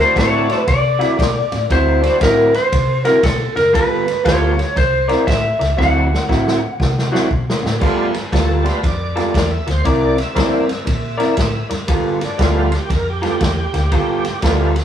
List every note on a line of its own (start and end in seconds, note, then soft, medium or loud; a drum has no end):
0.00 0.62 A3 medium
0.00 0.63 D4 medium
0.00 0.63 E4 medium
0.00 0.63 F#4 medium
0.00 0.17 C5 medium
0.00 snare soft
0.15 0.51 A2 medium
0.15 0.48 D3 medium
0.15 0.49 C4 medium
0.15 0.48 E4 medium
0.15 0.48 F#4 medium
0.15 0.68 C#5 medium
0.15 kick medium
0.15 snare loud
0.15 ride medium
0.49 muted clean electric guitar stroke soft
0.49 snare soft
0.49 ride medium
0.67 1.03 C3 medium
0.67 1.66 D5 loud
0.67 muted clean electric guitar stroke soft
0.67 kick medium
0.67 snare soft
0.67 ride medium
0.99 1.17 D3 medium
0.99 1.17 C4 medium
0.99 1.17 E4 medium
0.99 1.18 F#4 medium
0.99 snare soft
0.99 ride medium
1.18 1.41 B2 medium
1.18 muted clean electric guitar stroke soft
1.18 kick medium
1.18 snare loud
1.18 ride medium
1.52 1.64 A2 medium
1.52 muted clean electric guitar stroke medium
1.52 snare soft
1.52 ride medium
1.70 2.05 D2 medium
1.70 2.02 D3 medium
1.70 2.03 C4 medium
1.70 2.03 E4 medium
1.70 2.02 F#4 loud
1.70 2.23 C5 medium
1.70 kick medium
1.70 snare soft
1.70 ride medium
2.01 2.18 C4 medium
2.01 2.18 D4 medium
2.01 2.18 E4 medium
2.01 2.19 F#4 medium
2.01 muted clean electric guitar stroke soft
2.01 ride medium
2.05 snare soft
2.21 2.56 A2 medium
2.21 2.54 D3 medium
2.21 2.53 C4 medium
2.21 2.53 E4 medium
2.21 2.53 F#4 medium
2.21 2.52 A#4 medium
2.21 kick medium
2.21 snare loud
2.21 ride medium
2.54 3.02 C5 medium
2.54 muted clean electric guitar stroke soft
2.54 snare soft
2.54 ride medium
2.72 3.07 C3 medium
2.72 muted clean electric guitar stroke soft
2.72 kick medium
2.72 snare soft
2.72 ride medium
3.05 3.21 D3 medium
3.05 3.21 C4 medium
3.05 3.22 E4 medium
3.05 3.22 F#4 medium
3.05 3.23 A#4 medium
3.05 snare soft
3.05 ride medium
3.22 3.46 B2 medium
3.22 3.56 A4 medium
3.22 muted clean electric guitar stroke soft
3.22 kick medium
3.22 snare loud
3.22 ride medium
3.56 3.74 F#1 medium
3.56 3.74 A#4 medium
3.56 muted clean electric guitar stroke medium
3.56 snare soft
3.56 ride medium
3.73 4.09 G1 medium
3.73 4.06 G3 medium
3.73 4.06 B3 medium
3.73 4.05 F4 medium
3.73 4.05 A4 medium
3.73 4.25 B4 loud
3.73 kick medium
3.73 ride medium
3.77 snare soft
4.06 muted clean electric guitar stroke soft
4.06 snare soft
4.06 ride medium
4.24 4.60 D2 medium
4.24 4.57 G3 medium
4.24 4.54 A3 soft
4.24 4.57 B3 medium
4.24 4.55 B3 soft
4.24 4.57 F4 loud
4.24 4.54 F4 soft
4.24 4.55 G4 medium
4.24 4.56 A4 medium
4.24 4.77 C#5 medium
4.24 kick medium
4.24 snare loud
4.24 ride medium
4.57 muted clean electric guitar stroke soft
4.57 snare soft
4.57 ride medium
4.75 5.11 C2 medium
4.75 5.29 C5 loud
4.75 muted clean electric guitar stroke soft
4.75 kick medium
4.75 snare soft
4.75 ride medium
5.08 5.25 C4 medium
5.08 5.26 E4 medium
5.08 5.26 A#4 medium
5.08 5.26 D5 medium
5.08 snare soft
5.08 ride medium
5.27 5.50 A2 medium
5.27 5.78 E5 loud
5.27 muted clean electric guitar stroke soft
5.27 kick medium
5.27 snare medium
5.27 ride medium
5.59 5.72 C#2 medium
5.59 muted clean electric guitar stroke medium
5.59 snare soft
5.59 ride medium
5.77 6.13 D2 loud
5.77 6.10 D3 medium
5.77 6.07 F#3 medium
5.77 6.07 C4 medium
5.77 6.10 C4 medium
5.77 6.07 D4 medium
5.77 6.07 E4 medium
5.77 6.10 E4 medium
5.77 6.09 F#4 medium
5.77 7.27 F#5 medium
5.77 kick medium
5.77 snare medium
6.11 muted clean electric guitar stroke soft
6.11 snare medium
6.28 6.64 A2 medium
6.28 6.61 D3 medium
6.28 6.61 C4 medium
6.28 6.61 E4 medium
6.28 6.61 F#4 medium
6.28 kick medium
6.28 snare medium
6.48 snare medium
6.62 muted clean electric guitar stroke soft
6.80 7.14 C3 loud
6.80 muted clean electric guitar stroke soft
6.80 kick medium
6.80 snare medium
6.98 snare medium
7.11 7.29 D3 medium
7.11 7.28 F#3 medium
7.11 7.28 C4 medium
7.11 7.29 C4 medium
7.11 7.28 D4 medium
7.11 7.30 E4 medium
7.11 7.29 F#4 medium
7.11 7.30 F#4 medium
7.15 snare medium
7.30 7.53 B2 medium
7.30 muted clean electric guitar stroke soft
7.30 kick medium
7.50 snare loud
7.63 7.76 A2 medium
7.63 muted clean electric guitar stroke soft
7.63 snare medium
7.79 8.16 G1 medium
7.79 8.10 G3 medium
7.79 8.14 G3 medium
7.79 8.10 A3 medium
7.79 8.10 B3 medium
7.79 8.14 B3 medium
7.79 8.10 F4 medium
7.79 8.14 F4 medium
7.79 8.14 A4 loud
7.79 kick medium
7.79 crash medium
7.83 snare soft
8.14 muted clean electric guitar stroke soft
8.14 snare soft
8.14 ride medium
8.32 8.67 D2 medium
8.32 8.65 G3 medium
8.32 8.65 B3 medium
8.32 8.65 F4 medium
8.32 8.64 A4 medium
8.32 8.66 A4 medium
8.32 kick medium
8.32 snare loud
8.32 ride medium
8.63 8.81 G3 medium
8.63 8.81 A3 medium
8.63 8.81 B3 medium
8.63 8.81 F4 medium
8.63 8.83 B4 medium
8.63 muted clean electric guitar stroke soft
8.63 ride medium
8.67 snare soft
8.83 9.18 F2 medium
8.83 9.49 D5 medium
8.83 muted clean electric guitar stroke soft
8.83 kick medium
8.83 snare soft
8.83 ride medium
9.16 9.34 G3 medium
9.16 9.34 B3 medium
9.16 9.34 F4 medium
9.16 9.34 A4 medium
9.16 snare soft
9.16 ride medium
9.34 9.57 E2 medium
9.34 muted clean electric guitar stroke soft
9.34 kick medium
9.34 snare loud
9.34 ride medium
9.51 9.67 E5 medium
9.67 9.79 D2 medium
9.67 9.86 C5 medium
9.67 muted clean electric guitar stroke soft
9.67 snare soft
9.67 ride medium
9.83 10.20 C2 medium
9.83 10.17 C4 medium
9.83 10.17 E4 medium
9.83 10.16 A#4 medium
9.83 9.87 C#5 medium
9.83 10.16 D5 medium
9.83 kick medium
9.83 snare soft
9.83 ride medium
9.88 10.19 D5 medium
10.17 11.68 E5 medium
10.17 muted clean electric guitar stroke medium
10.17 snare soft
10.17 ride medium
10.34 10.71 G2 medium
10.34 10.64 E3 medium
10.34 10.65 A#3 medium
10.34 10.65 C4 medium
10.34 10.68 C4 medium
10.34 10.65 D4 medium
10.34 10.68 E4 medium
10.34 10.67 A#4 medium
10.34 10.67 D5 loud
10.34 kick medium
10.34 ride medium
10.38 snare loud
10.68 muted clean electric guitar stroke soft
10.68 snare soft
10.68 ride medium
10.85 11.22 A#2 loud
10.85 muted clean electric guitar stroke soft
10.85 kick medium
10.85 snare soft
10.85 ride medium
11.17 11.36 C4 medium
11.17 11.36 E4 medium
11.17 11.36 A#4 medium
11.17 11.36 D5 medium
11.17 ride medium
11.21 snare soft
11.37 11.60 A2 medium
11.37 muted clean electric guitar stroke soft
11.37 kick medium
11.37 snare loud
11.37 ride medium
11.70 11.83 G2 medium
11.70 muted clean electric guitar stroke medium
11.70 snare soft
11.70 ride medium
11.88 12.23 G1 loud
11.88 12.21 G3 medium
11.88 12.20 B3 medium
11.88 12.20 F4 medium
11.88 12.20 A4 loud
11.88 kick medium
11.88 snare soft
11.88 ride medium
12.21 12.40 D4 medium
12.21 muted clean electric guitar stroke soft
12.21 snare soft
12.21 ride medium
12.38 12.74 D2 medium
12.38 12.68 G3 medium
12.38 12.72 G3 medium
12.38 12.68 A3 soft
12.38 12.68 B3 medium
12.38 12.71 B3 medium
12.38 12.41 F4 medium
12.38 12.70 F4 medium
12.38 12.70 A4 medium
12.38 kick medium
12.38 snare loud
12.38 ride medium
12.43 12.74 F4 medium
12.71 muted clean electric guitar stroke soft
12.71 snare soft
12.71 ride medium
12.76 12.91 G4 medium
12.89 13.25 F2 medium
12.89 13.08 A#4 medium
12.89 muted clean electric guitar stroke soft
12.89 kick medium
12.89 snare soft
12.89 ride medium
13.10 13.41 G4 medium
13.22 13.39 G3 medium
13.22 13.40 B3 medium
13.22 13.40 F4 medium
13.22 13.40 A4 medium
13.22 snare soft
13.22 ride medium
13.39 13.63 E2 medium
13.39 13.42 F#4 medium
13.39 14.40 G4 loud
13.39 muted clean electric guitar stroke soft
13.39 kick medium
13.39 snare loud
13.39 ride medium
13.73 13.86 D2 medium
13.73 muted clean electric guitar stroke medium
13.73 snare soft
13.73 ride medium
13.92 14.26 G1 medium
13.92 14.25 G3 medium
13.92 14.24 B3 medium
13.92 14.24 F4 medium
13.92 14.23 A4 medium
13.92 kick medium
13.92 snare soft
13.92 ride medium
14.25 muted clean electric guitar stroke soft
14.25 snare soft
14.25 ride medium
14.41 14.77 D2 medium
14.41 14.71 G3 medium
14.41 14.75 G3 medium
14.41 14.71 A3 medium
14.41 14.72 B3 medium
14.41 14.76 B3 medium
14.41 14.72 F4 medium
14.41 14.76 F4 medium
14.41 14.75 A4 loud
14.41 kick medium
14.41 snare loud
14.41 ride medium
14.76 muted clean electric guitar stroke medium
14.76 snare soft
14.76 ride medium